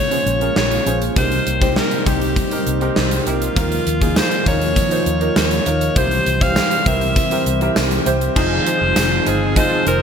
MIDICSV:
0, 0, Header, 1, 8, 480
1, 0, Start_track
1, 0, Key_signature, -4, "minor"
1, 0, Tempo, 600000
1, 930, Time_signature, 4, 2, 24, 8
1, 8016, End_track
2, 0, Start_track
2, 0, Title_t, "Alto saxophone"
2, 0, Program_c, 0, 65
2, 0, Note_on_c, 0, 73, 112
2, 424, Note_off_c, 0, 73, 0
2, 462, Note_on_c, 0, 73, 98
2, 810, Note_off_c, 0, 73, 0
2, 943, Note_on_c, 0, 72, 101
2, 1385, Note_off_c, 0, 72, 0
2, 1426, Note_on_c, 0, 70, 93
2, 1665, Note_on_c, 0, 67, 86
2, 1677, Note_off_c, 0, 70, 0
2, 2378, Note_off_c, 0, 67, 0
2, 2625, Note_on_c, 0, 65, 90
2, 3340, Note_on_c, 0, 72, 97
2, 3352, Note_off_c, 0, 65, 0
2, 3575, Note_off_c, 0, 72, 0
2, 3581, Note_on_c, 0, 73, 105
2, 4264, Note_off_c, 0, 73, 0
2, 4301, Note_on_c, 0, 73, 93
2, 4780, Note_on_c, 0, 72, 108
2, 4792, Note_off_c, 0, 73, 0
2, 5139, Note_on_c, 0, 77, 110
2, 5151, Note_off_c, 0, 72, 0
2, 5501, Note_on_c, 0, 76, 109
2, 5513, Note_off_c, 0, 77, 0
2, 6216, Note_off_c, 0, 76, 0
2, 6701, Note_on_c, 0, 72, 108
2, 7419, Note_on_c, 0, 68, 92
2, 7431, Note_off_c, 0, 72, 0
2, 7659, Note_on_c, 0, 72, 108
2, 7671, Note_off_c, 0, 68, 0
2, 7895, Note_off_c, 0, 72, 0
2, 7899, Note_on_c, 0, 70, 96
2, 8016, Note_off_c, 0, 70, 0
2, 8016, End_track
3, 0, Start_track
3, 0, Title_t, "Grand piano"
3, 0, Program_c, 1, 0
3, 0, Control_c, 1, 64, 127
3, 0, Note_on_c, 1, 46, 56
3, 0, Note_on_c, 1, 61, 68
3, 0, Note_on_c, 1, 65, 59
3, 0, Note_on_c, 1, 68, 57
3, 0, Note_on_c, 1, 70, 74
3, 0, Note_on_c, 1, 73, 74
3, 85, Note_off_c, 1, 61, 0
3, 85, Note_on_c, 1, 61, 71
3, 88, Note_off_c, 1, 65, 0
3, 88, Note_on_c, 1, 65, 62
3, 91, Note_off_c, 1, 68, 0
3, 91, Note_on_c, 1, 68, 60
3, 94, Note_on_c, 1, 72, 72
3, 253, Note_off_c, 1, 61, 0
3, 255, Note_off_c, 1, 65, 0
3, 256, Note_off_c, 1, 68, 0
3, 257, Note_off_c, 1, 72, 0
3, 327, Note_on_c, 1, 61, 71
3, 330, Note_on_c, 1, 65, 65
3, 334, Note_on_c, 1, 68, 63
3, 337, Note_off_c, 1, 70, 0
3, 337, Note_on_c, 1, 70, 75
3, 577, Note_off_c, 1, 61, 0
3, 578, Note_off_c, 1, 65, 0
3, 580, Note_off_c, 1, 68, 0
3, 582, Note_off_c, 1, 70, 0
3, 687, Note_on_c, 1, 61, 71
3, 691, Note_on_c, 1, 65, 68
3, 693, Note_on_c, 1, 68, 61
3, 696, Note_on_c, 1, 72, 80
3, 854, Note_off_c, 1, 61, 0
3, 856, Note_off_c, 1, 65, 0
3, 857, Note_off_c, 1, 68, 0
3, 858, Note_off_c, 1, 72, 0
3, 926, Note_on_c, 1, 60, 69
3, 928, Note_on_c, 1, 63, 65
3, 929, Note_on_c, 1, 48, 58
3, 932, Note_on_c, 1, 67, 62
3, 934, Note_on_c, 1, 70, 76
3, 940, Control_c, 1, 64, 0
3, 941, Note_off_c, 1, 73, 0
3, 946, Note_off_c, 1, 46, 0
3, 1080, Control_c, 1, 64, 127
3, 1176, Note_off_c, 1, 60, 0
3, 1177, Note_off_c, 1, 63, 0
3, 1179, Note_off_c, 1, 67, 0
3, 1180, Note_off_c, 1, 70, 0
3, 1287, Note_on_c, 1, 60, 67
3, 1290, Note_on_c, 1, 63, 64
3, 1295, Note_on_c, 1, 67, 62
3, 1297, Note_on_c, 1, 72, 75
3, 1537, Note_off_c, 1, 60, 0
3, 1538, Note_off_c, 1, 63, 0
3, 1540, Note_off_c, 1, 67, 0
3, 1542, Note_off_c, 1, 72, 0
3, 1618, Note_off_c, 1, 48, 0
3, 1647, Note_on_c, 1, 60, 69
3, 1650, Note_on_c, 1, 63, 66
3, 1653, Note_on_c, 1, 67, 66
3, 1656, Note_on_c, 1, 72, 75
3, 1897, Note_off_c, 1, 60, 0
3, 1898, Note_off_c, 1, 63, 0
3, 1899, Note_off_c, 1, 67, 0
3, 1901, Note_off_c, 1, 72, 0
3, 2006, Note_on_c, 1, 60, 71
3, 2010, Note_on_c, 1, 63, 68
3, 2013, Note_on_c, 1, 67, 64
3, 2017, Note_on_c, 1, 70, 84
3, 2173, Note_off_c, 1, 60, 0
3, 2175, Note_off_c, 1, 63, 0
3, 2177, Note_off_c, 1, 67, 0
3, 2179, Note_off_c, 1, 70, 0
3, 2244, Note_on_c, 1, 60, 89
3, 2248, Note_on_c, 1, 63, 79
3, 2252, Note_on_c, 1, 67, 77
3, 2255, Note_on_c, 1, 70, 90
3, 2495, Note_off_c, 1, 60, 0
3, 2497, Note_off_c, 1, 63, 0
3, 2499, Note_off_c, 1, 67, 0
3, 2501, Note_off_c, 1, 70, 0
3, 2607, Note_on_c, 1, 60, 73
3, 2610, Note_on_c, 1, 63, 63
3, 2613, Note_on_c, 1, 67, 69
3, 2615, Note_on_c, 1, 70, 85
3, 2774, Note_off_c, 1, 60, 0
3, 2776, Note_off_c, 1, 63, 0
3, 2777, Note_off_c, 1, 67, 0
3, 2778, Note_off_c, 1, 70, 0
3, 2848, Note_on_c, 1, 58, 69
3, 2850, Note_on_c, 1, 63, 62
3, 2853, Note_on_c, 1, 51, 63
3, 2854, Note_on_c, 1, 65, 67
3, 2858, Note_on_c, 1, 70, 82
3, 2861, Control_c, 1, 64, 0
3, 3006, Control_c, 1, 64, 127
3, 3097, Note_off_c, 1, 58, 0
3, 3098, Note_off_c, 1, 63, 0
3, 3100, Note_off_c, 1, 65, 0
3, 3102, Note_off_c, 1, 70, 0
3, 3207, Note_on_c, 1, 58, 66
3, 3209, Note_on_c, 1, 63, 60
3, 3214, Note_on_c, 1, 65, 61
3, 3216, Note_on_c, 1, 68, 74
3, 3456, Note_off_c, 1, 58, 0
3, 3458, Note_off_c, 1, 63, 0
3, 3460, Note_off_c, 1, 65, 0
3, 3461, Note_off_c, 1, 68, 0
3, 3539, Note_off_c, 1, 51, 0
3, 3568, Note_on_c, 1, 58, 68
3, 3571, Note_on_c, 1, 63, 64
3, 3574, Note_on_c, 1, 65, 61
3, 3578, Note_on_c, 1, 70, 78
3, 3817, Note_off_c, 1, 58, 0
3, 3819, Note_off_c, 1, 63, 0
3, 3820, Note_off_c, 1, 65, 0
3, 3822, Note_off_c, 1, 70, 0
3, 3926, Note_on_c, 1, 58, 72
3, 3930, Note_on_c, 1, 63, 68
3, 3933, Note_on_c, 1, 65, 68
3, 3935, Note_on_c, 1, 72, 85
3, 4094, Note_off_c, 1, 58, 0
3, 4095, Note_off_c, 1, 63, 0
3, 4097, Note_off_c, 1, 65, 0
3, 4098, Note_off_c, 1, 72, 0
3, 4166, Note_on_c, 1, 58, 69
3, 4168, Note_on_c, 1, 63, 66
3, 4172, Note_on_c, 1, 65, 63
3, 4176, Note_on_c, 1, 70, 78
3, 4416, Note_off_c, 1, 58, 0
3, 4417, Note_off_c, 1, 63, 0
3, 4419, Note_off_c, 1, 65, 0
3, 4421, Note_off_c, 1, 70, 0
3, 4526, Note_on_c, 1, 58, 73
3, 4529, Note_on_c, 1, 63, 71
3, 4531, Note_on_c, 1, 65, 67
3, 4535, Note_on_c, 1, 70, 80
3, 4693, Note_off_c, 1, 58, 0
3, 4695, Note_off_c, 1, 63, 0
3, 4696, Note_off_c, 1, 65, 0
3, 4698, Note_off_c, 1, 70, 0
3, 4768, Note_on_c, 1, 60, 71
3, 4771, Note_on_c, 1, 64, 69
3, 4773, Note_on_c, 1, 48, 65
3, 4775, Note_on_c, 1, 67, 67
3, 4777, Note_on_c, 1, 72, 84
3, 4781, Control_c, 1, 64, 0
3, 4918, Control_c, 1, 64, 127
3, 5017, Note_off_c, 1, 60, 0
3, 5019, Note_off_c, 1, 64, 0
3, 5021, Note_off_c, 1, 67, 0
3, 5022, Note_off_c, 1, 72, 0
3, 5128, Note_on_c, 1, 60, 69
3, 5130, Note_on_c, 1, 52, 62
3, 5133, Note_on_c, 1, 67, 66
3, 5137, Note_on_c, 1, 72, 77
3, 5377, Note_off_c, 1, 60, 0
3, 5378, Note_off_c, 1, 52, 0
3, 5380, Note_off_c, 1, 67, 0
3, 5381, Note_off_c, 1, 72, 0
3, 5460, Note_off_c, 1, 48, 0
3, 5488, Note_on_c, 1, 60, 74
3, 5491, Note_on_c, 1, 64, 68
3, 5493, Note_on_c, 1, 67, 64
3, 5497, Note_on_c, 1, 70, 76
3, 5737, Note_off_c, 1, 60, 0
3, 5738, Note_off_c, 1, 64, 0
3, 5740, Note_off_c, 1, 67, 0
3, 5742, Note_off_c, 1, 70, 0
3, 5849, Note_on_c, 1, 60, 77
3, 5852, Note_on_c, 1, 64, 68
3, 5855, Note_on_c, 1, 67, 69
3, 5858, Note_on_c, 1, 70, 84
3, 6015, Note_off_c, 1, 60, 0
3, 6016, Note_off_c, 1, 64, 0
3, 6018, Note_off_c, 1, 67, 0
3, 6019, Note_off_c, 1, 70, 0
3, 6088, Note_on_c, 1, 60, 88
3, 6092, Note_on_c, 1, 64, 79
3, 6095, Note_on_c, 1, 67, 83
3, 6099, Note_on_c, 1, 70, 93
3, 6337, Note_off_c, 1, 60, 0
3, 6339, Note_off_c, 1, 64, 0
3, 6340, Note_off_c, 1, 67, 0
3, 6343, Note_off_c, 1, 70, 0
3, 6446, Note_on_c, 1, 60, 90
3, 6450, Note_on_c, 1, 64, 83
3, 6453, Note_on_c, 1, 67, 84
3, 6456, Note_on_c, 1, 72, 100
3, 6614, Note_off_c, 1, 60, 0
3, 6615, Note_off_c, 1, 64, 0
3, 6617, Note_off_c, 1, 67, 0
3, 6619, Note_off_c, 1, 72, 0
3, 6685, Note_on_c, 1, 63, 79
3, 6689, Note_on_c, 1, 65, 70
3, 6692, Note_on_c, 1, 68, 71
3, 6694, Note_on_c, 1, 72, 84
3, 6700, Control_c, 1, 64, 0
3, 6848, Control_c, 1, 64, 127
3, 6853, Note_off_c, 1, 63, 0
3, 6855, Note_off_c, 1, 65, 0
3, 6856, Note_off_c, 1, 68, 0
3, 6858, Note_off_c, 1, 72, 0
3, 6926, Note_on_c, 1, 63, 78
3, 6930, Note_on_c, 1, 65, 72
3, 6933, Note_on_c, 1, 68, 71
3, 6936, Note_on_c, 1, 72, 82
3, 7258, Note_off_c, 1, 63, 0
3, 7260, Note_off_c, 1, 65, 0
3, 7262, Note_off_c, 1, 68, 0
3, 7264, Note_off_c, 1, 72, 0
3, 7405, Note_on_c, 1, 63, 76
3, 7409, Note_on_c, 1, 65, 68
3, 7412, Note_on_c, 1, 68, 65
3, 7415, Note_on_c, 1, 72, 75
3, 7573, Note_off_c, 1, 63, 0
3, 7575, Note_off_c, 1, 65, 0
3, 7576, Note_off_c, 1, 68, 0
3, 7578, Note_off_c, 1, 72, 0
3, 7646, Note_on_c, 1, 63, 80
3, 7649, Note_on_c, 1, 65, 71
3, 7653, Note_on_c, 1, 68, 69
3, 7656, Note_on_c, 1, 75, 82
3, 7814, Note_off_c, 1, 63, 0
3, 7815, Note_off_c, 1, 65, 0
3, 7817, Note_off_c, 1, 68, 0
3, 7819, Note_off_c, 1, 75, 0
3, 7887, Note_on_c, 1, 63, 75
3, 7890, Note_on_c, 1, 65, 71
3, 7893, Note_on_c, 1, 68, 69
3, 7896, Note_on_c, 1, 72, 84
3, 8016, Note_off_c, 1, 63, 0
3, 8016, Note_off_c, 1, 65, 0
3, 8016, Note_off_c, 1, 68, 0
3, 8016, Note_off_c, 1, 72, 0
3, 8016, End_track
4, 0, Start_track
4, 0, Title_t, "Analog polysynth"
4, 0, Program_c, 2, 90
4, 6689, Note_on_c, 2, 53, 81
4, 6689, Note_on_c, 2, 63, 80
4, 6690, Note_on_c, 2, 68, 84
4, 8016, Note_off_c, 2, 53, 0
4, 8016, Note_off_c, 2, 63, 0
4, 8016, Note_off_c, 2, 68, 0
4, 8016, End_track
5, 0, Start_track
5, 0, Title_t, "Overdriven electric guitar"
5, 0, Program_c, 3, 29
5, 6686, Note_on_c, 3, 53, 74
5, 6694, Note_on_c, 3, 60, 80
5, 6700, Note_on_c, 3, 65, 82
5, 7402, Note_off_c, 3, 65, 0
5, 7405, Note_on_c, 3, 65, 53
5, 7412, Note_off_c, 3, 60, 0
5, 7424, Note_on_c, 3, 60, 41
5, 7642, Note_off_c, 3, 53, 0
5, 7646, Note_on_c, 3, 53, 66
5, 7647, Note_off_c, 3, 60, 0
5, 7648, Note_off_c, 3, 65, 0
5, 7657, Note_on_c, 3, 60, 62
5, 7665, Note_on_c, 3, 65, 76
5, 8016, Note_off_c, 3, 53, 0
5, 8016, Note_off_c, 3, 60, 0
5, 8016, Note_off_c, 3, 65, 0
5, 8016, End_track
6, 0, Start_track
6, 0, Title_t, "String machine"
6, 0, Program_c, 4, 50
6, 0, Note_on_c, 4, 49, 73
6, 0, Note_on_c, 4, 56, 69
6, 0, Note_on_c, 4, 58, 74
6, 0, Note_on_c, 4, 65, 87
6, 912, Note_off_c, 4, 49, 0
6, 912, Note_off_c, 4, 56, 0
6, 912, Note_off_c, 4, 65, 0
6, 928, Note_on_c, 4, 48, 77
6, 928, Note_on_c, 4, 63, 86
6, 930, Note_on_c, 4, 55, 70
6, 2819, Note_off_c, 4, 58, 0
6, 2830, Note_off_c, 4, 48, 0
6, 2830, Note_off_c, 4, 63, 0
6, 2831, Note_off_c, 4, 55, 0
6, 2853, Note_on_c, 4, 58, 71
6, 2853, Note_on_c, 4, 65, 89
6, 2854, Note_on_c, 4, 51, 79
6, 2854, Note_on_c, 4, 53, 69
6, 4752, Note_off_c, 4, 58, 0
6, 4753, Note_off_c, 4, 51, 0
6, 4753, Note_off_c, 4, 53, 0
6, 4753, Note_off_c, 4, 65, 0
6, 4771, Note_on_c, 4, 52, 85
6, 4771, Note_on_c, 4, 60, 73
6, 4771, Note_on_c, 4, 67, 91
6, 4772, Note_on_c, 4, 55, 75
6, 6671, Note_off_c, 4, 52, 0
6, 6672, Note_off_c, 4, 55, 0
6, 6672, Note_off_c, 4, 60, 0
6, 6672, Note_off_c, 4, 67, 0
6, 6692, Note_on_c, 4, 51, 82
6, 6692, Note_on_c, 4, 60, 73
6, 6692, Note_on_c, 4, 65, 91
6, 6693, Note_on_c, 4, 56, 70
6, 8016, Note_off_c, 4, 51, 0
6, 8016, Note_off_c, 4, 56, 0
6, 8016, Note_off_c, 4, 60, 0
6, 8016, Note_off_c, 4, 65, 0
6, 8016, End_track
7, 0, Start_track
7, 0, Title_t, "Fingered electric bass"
7, 0, Program_c, 5, 33
7, 210, Note_on_c, 5, 34, 89
7, 383, Note_off_c, 5, 34, 0
7, 451, Note_on_c, 5, 34, 89
7, 623, Note_off_c, 5, 34, 0
7, 691, Note_on_c, 5, 34, 90
7, 864, Note_off_c, 5, 34, 0
7, 931, Note_on_c, 5, 36, 90
7, 1104, Note_off_c, 5, 36, 0
7, 1173, Note_on_c, 5, 36, 89
7, 1431, Note_off_c, 5, 36, 0
7, 1651, Note_on_c, 5, 36, 91
7, 1910, Note_off_c, 5, 36, 0
7, 2133, Note_on_c, 5, 36, 91
7, 2305, Note_off_c, 5, 36, 0
7, 2372, Note_on_c, 5, 36, 100
7, 2544, Note_off_c, 5, 36, 0
7, 2612, Note_on_c, 5, 36, 87
7, 2784, Note_off_c, 5, 36, 0
7, 2852, Note_on_c, 5, 39, 102
7, 3024, Note_off_c, 5, 39, 0
7, 3092, Note_on_c, 5, 39, 98
7, 3350, Note_off_c, 5, 39, 0
7, 3571, Note_on_c, 5, 39, 89
7, 3830, Note_off_c, 5, 39, 0
7, 4050, Note_on_c, 5, 39, 101
7, 4223, Note_off_c, 5, 39, 0
7, 4291, Note_on_c, 5, 39, 94
7, 4463, Note_off_c, 5, 39, 0
7, 4532, Note_on_c, 5, 39, 85
7, 4704, Note_off_c, 5, 39, 0
7, 4769, Note_on_c, 5, 36, 103
7, 4943, Note_off_c, 5, 36, 0
7, 5010, Note_on_c, 5, 36, 103
7, 5269, Note_off_c, 5, 36, 0
7, 5490, Note_on_c, 5, 36, 92
7, 5749, Note_off_c, 5, 36, 0
7, 5970, Note_on_c, 5, 36, 97
7, 6143, Note_off_c, 5, 36, 0
7, 6211, Note_on_c, 5, 36, 104
7, 6383, Note_off_c, 5, 36, 0
7, 6449, Note_on_c, 5, 36, 95
7, 6623, Note_off_c, 5, 36, 0
7, 6691, Note_on_c, 5, 29, 98
7, 6863, Note_off_c, 5, 29, 0
7, 7050, Note_on_c, 5, 29, 90
7, 7136, Note_off_c, 5, 29, 0
7, 7170, Note_on_c, 5, 29, 96
7, 7343, Note_off_c, 5, 29, 0
7, 7411, Note_on_c, 5, 31, 84
7, 7670, Note_off_c, 5, 31, 0
7, 7892, Note_on_c, 5, 29, 97
7, 8016, Note_off_c, 5, 29, 0
7, 8016, End_track
8, 0, Start_track
8, 0, Title_t, "Drums"
8, 91, Note_on_c, 9, 42, 52
8, 171, Note_off_c, 9, 42, 0
8, 213, Note_on_c, 9, 42, 56
8, 293, Note_off_c, 9, 42, 0
8, 330, Note_on_c, 9, 42, 42
8, 410, Note_off_c, 9, 42, 0
8, 450, Note_on_c, 9, 38, 103
8, 530, Note_off_c, 9, 38, 0
8, 571, Note_on_c, 9, 42, 53
8, 651, Note_off_c, 9, 42, 0
8, 692, Note_on_c, 9, 42, 69
8, 772, Note_off_c, 9, 42, 0
8, 813, Note_on_c, 9, 42, 56
8, 893, Note_off_c, 9, 42, 0
8, 931, Note_on_c, 9, 36, 110
8, 931, Note_on_c, 9, 42, 82
8, 1011, Note_off_c, 9, 36, 0
8, 1011, Note_off_c, 9, 42, 0
8, 1053, Note_on_c, 9, 42, 45
8, 1133, Note_off_c, 9, 42, 0
8, 1174, Note_on_c, 9, 42, 74
8, 1254, Note_off_c, 9, 42, 0
8, 1292, Note_on_c, 9, 36, 90
8, 1294, Note_on_c, 9, 42, 53
8, 1372, Note_off_c, 9, 36, 0
8, 1374, Note_off_c, 9, 42, 0
8, 1411, Note_on_c, 9, 38, 109
8, 1491, Note_off_c, 9, 38, 0
8, 1530, Note_on_c, 9, 42, 51
8, 1610, Note_off_c, 9, 42, 0
8, 1652, Note_on_c, 9, 36, 92
8, 1652, Note_on_c, 9, 42, 66
8, 1732, Note_off_c, 9, 36, 0
8, 1732, Note_off_c, 9, 42, 0
8, 1772, Note_on_c, 9, 42, 46
8, 1852, Note_off_c, 9, 42, 0
8, 1891, Note_on_c, 9, 36, 93
8, 1892, Note_on_c, 9, 42, 88
8, 1971, Note_off_c, 9, 36, 0
8, 1972, Note_off_c, 9, 42, 0
8, 2011, Note_on_c, 9, 42, 53
8, 2091, Note_off_c, 9, 42, 0
8, 2133, Note_on_c, 9, 42, 57
8, 2213, Note_off_c, 9, 42, 0
8, 2249, Note_on_c, 9, 42, 42
8, 2329, Note_off_c, 9, 42, 0
8, 2370, Note_on_c, 9, 38, 102
8, 2450, Note_off_c, 9, 38, 0
8, 2491, Note_on_c, 9, 42, 58
8, 2571, Note_off_c, 9, 42, 0
8, 2613, Note_on_c, 9, 42, 67
8, 2693, Note_off_c, 9, 42, 0
8, 2734, Note_on_c, 9, 42, 58
8, 2814, Note_off_c, 9, 42, 0
8, 2852, Note_on_c, 9, 36, 104
8, 2853, Note_on_c, 9, 42, 82
8, 2932, Note_off_c, 9, 36, 0
8, 2933, Note_off_c, 9, 42, 0
8, 2974, Note_on_c, 9, 42, 49
8, 3054, Note_off_c, 9, 42, 0
8, 3094, Note_on_c, 9, 42, 80
8, 3174, Note_off_c, 9, 42, 0
8, 3212, Note_on_c, 9, 36, 90
8, 3214, Note_on_c, 9, 42, 55
8, 3292, Note_off_c, 9, 36, 0
8, 3294, Note_off_c, 9, 42, 0
8, 3331, Note_on_c, 9, 38, 110
8, 3331, Note_on_c, 9, 54, 73
8, 3411, Note_off_c, 9, 38, 0
8, 3411, Note_off_c, 9, 54, 0
8, 3451, Note_on_c, 9, 42, 50
8, 3531, Note_off_c, 9, 42, 0
8, 3571, Note_on_c, 9, 36, 89
8, 3571, Note_on_c, 9, 42, 70
8, 3651, Note_off_c, 9, 36, 0
8, 3651, Note_off_c, 9, 42, 0
8, 3692, Note_on_c, 9, 42, 48
8, 3772, Note_off_c, 9, 42, 0
8, 3810, Note_on_c, 9, 36, 89
8, 3812, Note_on_c, 9, 42, 89
8, 3890, Note_off_c, 9, 36, 0
8, 3892, Note_off_c, 9, 42, 0
8, 3930, Note_on_c, 9, 42, 53
8, 4010, Note_off_c, 9, 42, 0
8, 4051, Note_on_c, 9, 42, 57
8, 4131, Note_off_c, 9, 42, 0
8, 4168, Note_on_c, 9, 42, 44
8, 4248, Note_off_c, 9, 42, 0
8, 4289, Note_on_c, 9, 54, 73
8, 4290, Note_on_c, 9, 38, 111
8, 4369, Note_off_c, 9, 54, 0
8, 4370, Note_off_c, 9, 38, 0
8, 4408, Note_on_c, 9, 42, 58
8, 4488, Note_off_c, 9, 42, 0
8, 4530, Note_on_c, 9, 42, 70
8, 4610, Note_off_c, 9, 42, 0
8, 4650, Note_on_c, 9, 42, 58
8, 4730, Note_off_c, 9, 42, 0
8, 4768, Note_on_c, 9, 42, 86
8, 4769, Note_on_c, 9, 36, 110
8, 4848, Note_off_c, 9, 42, 0
8, 4849, Note_off_c, 9, 36, 0
8, 4891, Note_on_c, 9, 42, 47
8, 4971, Note_off_c, 9, 42, 0
8, 5012, Note_on_c, 9, 42, 79
8, 5092, Note_off_c, 9, 42, 0
8, 5130, Note_on_c, 9, 36, 96
8, 5132, Note_on_c, 9, 42, 52
8, 5210, Note_off_c, 9, 36, 0
8, 5212, Note_off_c, 9, 42, 0
8, 5249, Note_on_c, 9, 38, 106
8, 5251, Note_on_c, 9, 54, 81
8, 5329, Note_off_c, 9, 38, 0
8, 5331, Note_off_c, 9, 54, 0
8, 5369, Note_on_c, 9, 42, 52
8, 5449, Note_off_c, 9, 42, 0
8, 5490, Note_on_c, 9, 36, 94
8, 5490, Note_on_c, 9, 42, 65
8, 5570, Note_off_c, 9, 36, 0
8, 5570, Note_off_c, 9, 42, 0
8, 5610, Note_on_c, 9, 42, 48
8, 5690, Note_off_c, 9, 42, 0
8, 5729, Note_on_c, 9, 36, 91
8, 5730, Note_on_c, 9, 42, 84
8, 5809, Note_off_c, 9, 36, 0
8, 5810, Note_off_c, 9, 42, 0
8, 5849, Note_on_c, 9, 42, 54
8, 5929, Note_off_c, 9, 42, 0
8, 5971, Note_on_c, 9, 42, 59
8, 6051, Note_off_c, 9, 42, 0
8, 6089, Note_on_c, 9, 42, 44
8, 6169, Note_off_c, 9, 42, 0
8, 6208, Note_on_c, 9, 54, 69
8, 6209, Note_on_c, 9, 38, 112
8, 6288, Note_off_c, 9, 54, 0
8, 6289, Note_off_c, 9, 38, 0
8, 6328, Note_on_c, 9, 42, 59
8, 6408, Note_off_c, 9, 42, 0
8, 6450, Note_on_c, 9, 42, 69
8, 6530, Note_off_c, 9, 42, 0
8, 6571, Note_on_c, 9, 42, 57
8, 6651, Note_off_c, 9, 42, 0
8, 6690, Note_on_c, 9, 36, 116
8, 6690, Note_on_c, 9, 49, 94
8, 6770, Note_off_c, 9, 36, 0
8, 6770, Note_off_c, 9, 49, 0
8, 6932, Note_on_c, 9, 42, 81
8, 7012, Note_off_c, 9, 42, 0
8, 7169, Note_on_c, 9, 38, 116
8, 7169, Note_on_c, 9, 54, 68
8, 7170, Note_on_c, 9, 42, 100
8, 7171, Note_off_c, 9, 54, 0
8, 7171, Note_on_c, 9, 54, 84
8, 7249, Note_off_c, 9, 38, 0
8, 7250, Note_off_c, 9, 42, 0
8, 7251, Note_off_c, 9, 54, 0
8, 7412, Note_on_c, 9, 42, 72
8, 7492, Note_off_c, 9, 42, 0
8, 7650, Note_on_c, 9, 36, 93
8, 7652, Note_on_c, 9, 42, 90
8, 7730, Note_off_c, 9, 36, 0
8, 7732, Note_off_c, 9, 42, 0
8, 7893, Note_on_c, 9, 42, 62
8, 7973, Note_off_c, 9, 42, 0
8, 8016, End_track
0, 0, End_of_file